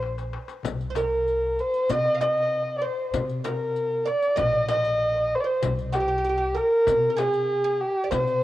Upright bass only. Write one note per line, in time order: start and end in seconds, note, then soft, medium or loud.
0.00 0.35 A#1 loud
0.65 1.59 C2 medium
1.89 2.83 C3 medium
3.13 4.07 C3 loud
4.38 5.32 A#1 loud
5.63 6.56 C2 loud
6.88 7.81 C3 medium
8.12 8.44 C3 loud